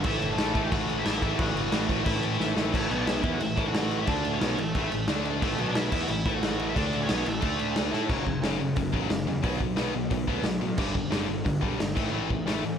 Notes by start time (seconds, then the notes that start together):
0.00 A2 F#5, crash
0.04 A1 E3 A3 E4, kick
0.08 E5
0.22 G1, crash
0.32 A4 A5
0.37 A1 A2 E3 A3, snare, crash
0.54 A2 E3 A3, kick, crash
0.64 G4 G5
0.71 A1 A2 E3 A3 F#4 F#5, kick, crash
0.89 crash
0.98 E4 E5
1.04 A1 A2 E3 A3, snare, crash
1.22 A1 A2 E3 A3 E4 E5, kick, crash
1.37 A1 A2 E3 A3 F#4 F#5, kick, crash
1.54 G1, crash
1.72 A1 A2 E3 A3, snare, crash
1.89 A2 E3 A3, kick, crash
2.05 A1 A2 E3 A3 E4 E5, kick, crash
2.23 crash
2.38 A1 A2 E3 A3, snare
2.55 A1 A2 E3 A3, snare
2.72 A1 A2 E3 A3 A4, kick, crash
2.90 B1 B2 F#3 B3, crash
2.97 D4 D5
3.06 E4 E5, snare, crash
3.23 E2 E3 B3 E4, kick, crash
3.33 F#4 F#5
3.40 A1 A2 E3 E5, crash
3.44 E4
3.56 A1 A2 E3 A3, kick, crash
3.67 F#4 F#5
3.74 snare, crash
3.91 crash
4.02 E4 E5
4.07 D2 D3 A3 D4 D5, kick, crash
4.25 crash
4.34 C#4 C#5
4.40 B1 B2 F#3 B3, snare, crash
4.57 A1 A2 E3 A3 A4, crash
4.75 A1 A2 E3 A3, kick, crash
4.92 A1 A2 E3, crash
5.08 D2 D3 A3 D4, snare, crash
5.25 crash
5.42 A1 A2 E3 A3 A4, kick, crash
5.58 B1 B2 F#3 B3, crash
5.69 D4 D5
5.75 E4 E5, snare, crash
5.92 E2 E3 B3 E4, kick, crash
6.01 F#4 F#5
6.08 A1 A2 E3 E4 E5, crash
6.25 A1 A2 E3 A3, kick, crash
6.35 F#4 F#5
6.43 snare, crash
6.59 crash
6.69 E4 E5
6.75 D2 D3 A3 D4, kick, crash
6.80 D5
6.93 crash
7.01 C#4 C#5
7.09 B1 B2 F#3 B3, snare, crash
7.25 A1 A2 E3 A3 A4, crash
7.41 D2 D3 A3 D4, kick, crash
7.59 crash
7.76 snare, crash
7.93 A2 A3 E4 A4, snare
8.08 F#1 F#2 C#3 F#3, kick, crash
8.26 F#1 F#2 C#3, kick
8.42 F#1 F#2 C#3 F#3, snare, open hi-hat
8.60 F#1 F#2 C#3
8.76 F#1 F#2 C#3, kick, open hi-hat
8.92 A1 F#2 C#3 F#3, kick
9.09 F#1 F#2 C#3, snare, open hi-hat
9.25 E2 F#2 C#3
9.43 B1 B2 F#3 B3, kick, open hi-hat
9.60 B1 B2 F#3, kick
9.76 B1 B2 F#3 B3, snare, open hi-hat
9.93 B1 B2 F#3
10.10 B1 B2 F#3, kick, open hi-hat
10.27 D2 B2 F#3 B3, kick
10.43 B1 B2 F#3, snare, open hi-hat
10.61 A2 B2 F#3
10.78 G1 G2 D3 G3, kick, crash
10.94 G1 G2 D3, kick
11.11 G1 G2 D3 G3, snare, open hi-hat
11.28 G1 G2 D3
11.44 G1 G2 D3, kick, open hi-hat
11.61 B1 G2 D3 G3, kick
11.79 G1 G2 D3, snare, open hi-hat
11.96 A1 A2 E3 A3, kick, crash
12.11 A1 A2 E3 A3
12.30 A1 A2 E3, kick
12.47 A1 A2 E3 A3, snare, open hi-hat
12.63 A1 A2 E3